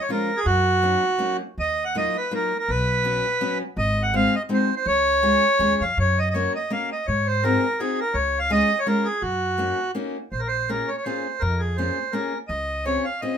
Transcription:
0.01 C#5
0.09 F3 G#3 C#4 F4 A#4
0.37 G#4
0.46 F#2 F#4
0.82 F#3 A#3 C#4 D#4
1.18 F#3 A#3 C#4 D#4
1.58 D#2 D#5
1.85 F#5
1.95 F#3 A#3 D#4 F4 D#5
2.17 B4
2.31 F#3 A#3 D#4 F4 A#4
2.59 A#4
2.68 B1 B4
3.04 F#3 B3 C#4 F#4
3.41 F#3 B3 C#4 F#4
3.77 G#1 D#5
4.03 F#5
4.14 G#3 C4 D#4 F#4 F5
4.36 D#5
4.49 G#3 C4 D#4 F#4
4.54 C5
4.76 C5
4.86 C#2 C#5
5.23 G#3 C#4 F4 G#4
5.59 D#2 G#3 C#4 F4 G#4
5.80 F2 F5
5.97 F#2 C#5
6.19 D#5
6.30 C#5 D#5
6.34 A#3 C#4 F#4 A#4
6.56 D#5
6.70 A#3 C#4 F#4 A#4 F5
6.92 D#5
7.07 G#2 C#5
7.27 C5
7.43 C4 D#4 F#4 G#4 A#4
7.80 C4 D#4 F#4 G#4
8.00 A#4
8.14 C#2 C#5
8.39 F5
8.50 G#3 C#4 F4 G#4 D#5
8.79 C#5
8.86 G#3 C#4 F4 G#4 A#4
9.05 G#4
9.22 F#2 F#4
9.58 A#3 C#4 D#4 F#4
9.95 A#3 C#4 D#4 F#4
10.32 A#1 C5
10.39 A#4
10.48 C5
10.69 A#3 C#4 F4 G#4 A#4
10.88 C#5
10.98 C#5
11.04 A#3 C#4 F4 G#4 C5
11.40 F2 A#4
11.59 G#4
11.77 A#3 C#4 F4 G#4 C5
12.12 A#3 C#4 F4 G#4 A#4
12.48 C#2 D#5
12.85 C4 C#4 F4 G#4 C#5
13.05 F5
13.21 C4 C#4 F4 G#4 D#5

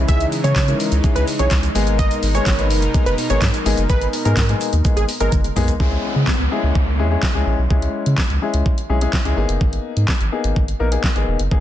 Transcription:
Already playing: C#3 E3 G#3
0.08 C#2 E3 G#3 C#4 D#4 E4 G#4 E5, kick, closed hi-hat, shaker
0.20 closed hi-hat, shaker
0.32 open hi-hat, shaker
0.44 C#3 E3 G#3 C#4 E4 G#4 C#5, closed hi-hat, shaker
0.56 C#3, kick, snare, clap, closed hi-hat, shaker
0.68 E3 G#3 C#4 E4 A#4, closed hi-hat, shaker
0.80 open hi-hat, shaker
0.92 C#2, closed hi-hat, shaker
1.03 E3 G#3 C#4 E4 G#4, kick, closed hi-hat, shaker
1.16 C#2 B4, closed hi-hat, shaker
1.28 open hi-hat, shaker
1.39 B1 E3 G#3 C#4 E4 G#4 C#5, closed hi-hat, shaker
1.51 C#2, kick, snare, clap, closed hi-hat, shaker
1.63 closed hi-hat, shaker
1.75 G#1 B2 G#3 A#3 B3 D#4 G#4 A#4, open hi-hat, shaker
1.87 closed hi-hat, shaker
1.99 D#5, kick, closed hi-hat, shaker
2.11 closed hi-hat, shaker
2.23 G#1, open hi-hat, shaker
2.34 G#3 A#3 B3 D#4 G#4 C#5, closed hi-hat, shaker
2.47 G#1, kick, snare, clap, closed hi-hat, shaker
2.58 G#3 A#3 B3 D#4 B4, closed hi-hat, shaker
2.70 F#1, open hi-hat, shaker
2.82 closed hi-hat, shaker
2.94 G#3 A#3 B3 D#4 G#4, kick, closed hi-hat, shaker
3.06 F#1 B4, closed hi-hat, shaker
3.18 open hi-hat, shaker
3.30 G#1 G#3 A#3 B3 D#4 G#4 C#5, closed hi-hat, shaker
3.42 G#2, kick, snare, clap, closed hi-hat, shaker
3.54 closed hi-hat, shaker
3.65 G#1 G#3 A#3 B3 D#4 G#4, open hi-hat, shaker
3.77 F#1, closed hi-hat, shaker
3.89 G#1 G#3 A#3 B3 D#4 G#4 B4, kick, closed hi-hat, shaker
4.02 closed hi-hat, shaker
4.13 open hi-hat, shaker
4.25 G#2 G#3 A#3 B3 D#4 G#4 A#4, closed hi-hat, shaker
4.37 G#2, kick, snare, clap, closed hi-hat, shaker
4.49 G#3 A#3 B3 D#4 G#4, closed hi-hat, shaker
4.61 open hi-hat, shaker
4.73 D#2, closed hi-hat, shaker
4.84 G#3 A#3 B3 D#4 G#4, kick, closed hi-hat, shaker
4.97 G#1 G#4, closed hi-hat, shaker
5.09 open hi-hat, shaker
5.20 G#1 G#3 A#3 B3 D#4 G#4 A#4, closed hi-hat, shaker
5.32 F#1, kick, closed hi-hat, high tom, shaker
5.44 closed hi-hat, shaker
5.56 B1 G#3 A#3 B3 D#4 G#4, mid tom, open hi-hat, shaker
5.68 closed hi-hat, floor tom, shaker
5.80 C#2 G#3 C#4 E4 G#4, kick, downlifter
6.16 C#3
6.27 kick, snare, clap
6.40 C#2
6.51 G#3 C#4 E4 G#4
6.63 C#2
6.75 C#2, kick
6.99 E2 G#3 C#4 E4 G#4
7.11 G#3 C#4 E4 G#4
7.23 kick, snare, clap
7.35 C#2 G#3 C#4 E4 G#4
7.47 A#1
7.59 B1
7.70 C#2 G#3 C#4 E4 G#4, kick
7.82 closed hi-hat
8.06 C#3, closed hi-hat
8.18 kick, snare, clap
8.30 C#2, closed hi-hat
8.42 G#3 C#4 E4 G#4
8.54 C#2, closed hi-hat
8.66 kick
8.78 closed hi-hat
8.89 B1 G#3 C#4 E4 G#4
9.01 G#3 C#4 E4 G#4, closed hi-hat
9.13 kick, snare, clap
9.25 C#2 G#3 C#4 E4 G#4, closed hi-hat
9.37 G#1 A#3 B3 D#4 G#4
9.49 F#1, closed hi-hat
9.61 G#1, kick
9.73 closed hi-hat
9.97 G#2, closed hi-hat
10.08 kick, snare, clap
10.21 G#1, closed hi-hat
10.32 A#3 B3 D#4 G#4
10.44 G#1, closed hi-hat
10.56 G#1, kick
10.68 closed hi-hat
10.79 A#1 A#3 B3 D#4 A#4
10.91 A#3 B3 D#4 G#4, closed hi-hat
11.04 kick, snare, clap
11.15 G#1 A#3 B3 D#4 G#4, closed hi-hat
11.28 E1
11.39 F#1, closed hi-hat
11.51 G#1 A#3 B3 D#4 G#4, kick

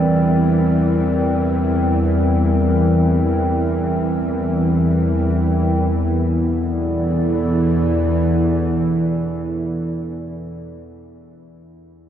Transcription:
Already playing: E2 E3 G3 C4 E4 A#4 D5 E5 G5
5.91 E2 E3 B3
6.07 E4
6.24 A4
6.43 D5

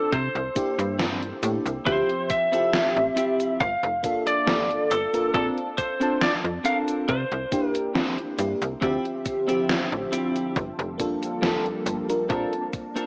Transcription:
Already playing: C4 D4 F4 A4 C5 A5
0.12 C3 C5, kick, closed hi-hat, cabasa
0.35 C2, closed hi-hat
0.55 A#3 D4 E4 G4, kick, closed hi-hat, cabasa
0.78 G2, muted clean electric guitar stroke, closed hi-hat, cabasa
0.99 C4 D4 E4 A#4, snare, closed hi-hat, cabasa
1.23 closed hi-hat
1.42 A2 A#3 D4 E4 G4, muted clean electric guitar stroke, closed hi-hat, cabasa
1.66 C2, closed hi-hat, cabasa
1.85 D2 F3 C4 E4 F4 G4 C5 E5, kick, closed hi-hat, cabasa
2.09 closed hi-hat
2.29 E5, muted clean electric guitar stroke, kick, closed hi-hat, cabasa
2.52 F3 C4 E4 F4 G4 A4 E5, closed hi-hat, cabasa
2.73 snare, closed hi-hat, cabasa
2.97 A1, closed hi-hat
3.16 C4 E4 F4 G4, closed hi-hat, cabasa
3.40 closed hi-hat, cabasa
3.60 G1 F5, kick, closed hi-hat, cabasa
3.83 F1, closed hi-hat
4.03 G1 A#3 D4 F4 A4, kick, closed hi-hat, cabasa
4.26 F1 D5, muted clean electric guitar stroke, closed hi-hat, cabasa
4.46 F1 A#3 F4 G4 A4, snare, closed hi-hat, cabasa
4.71 closed hi-hat
4.90 G1 A4, muted clean electric guitar stroke, closed hi-hat, cabasa
5.13 A#3 D4 F4 A#4, closed hi-hat, cabasa
5.34 A#1 C4 D4 F4 A4 A#4 A5, kick, closed hi-hat, cabasa
5.58 closed hi-hat
5.77 C5, muted clean electric guitar stroke, kick, closed hi-hat, cabasa
5.99 C4 D4 F4 A4 C5 A5, closed hi-hat, cabasa
6.21 D5, snare, closed hi-hat, cabasa
6.44 F2, closed hi-hat
6.64 C4 D4 A4 A#4 F5, closed hi-hat, cabasa
6.88 closed hi-hat, cabasa
7.08 C3 C5, kick, closed hi-hat, cabasa
7.31 C2, closed hi-hat
7.51 A#3 D4 E4 G4, kick, closed hi-hat, cabasa
7.68 A#4
7.74 muted clean electric guitar stroke, closed hi-hat, cabasa
7.94 C4 D4 E4 C5, snare, closed hi-hat, cabasa
8.18 closed hi-hat
8.38 G2 A#3 D4 E4 G4, muted clean electric guitar stroke, closed hi-hat, cabasa
8.62 C2, closed hi-hat, cabasa
8.81 D2 D3 F3 C4 E4 F4 G4 E5, kick, closed hi-hat, cabasa
9.05 closed hi-hat
9.25 muted clean electric guitar stroke, kick, closed hi-hat, cabasa
9.47 F3 C4 E4 F4 G4 E5, closed hi-hat, cabasa
9.69 snare, closed hi-hat, cabasa
9.92 A1, closed hi-hat
10.12 C4 E4 F4 G4, closed hi-hat, cabasa
10.36 closed hi-hat, cabasa
10.56 G1 G3 A#3 A4, kick, closed hi-hat, cabasa
10.79 F1, closed hi-hat
10.98 G1 A#3 D4 F4 A4, kick, closed hi-hat, cabasa
11.22 F1, muted clean electric guitar stroke, closed hi-hat, cabasa
11.42 F1 A#3 F4 G4 A4, snare, closed hi-hat, cabasa
11.66 closed hi-hat
11.86 G1, muted clean electric guitar stroke, closed hi-hat, cabasa
12.08 A#3 D4 F4 A#4, closed hi-hat, cabasa
12.29 A#1 A#3 C4 D4 F4 A4 A#4 A5, kick, closed hi-hat, cabasa
12.53 closed hi-hat
12.72 muted clean electric guitar stroke, kick, closed hi-hat, cabasa
12.95 C4 D4 F4 A4 A#4 A5, closed hi-hat, cabasa

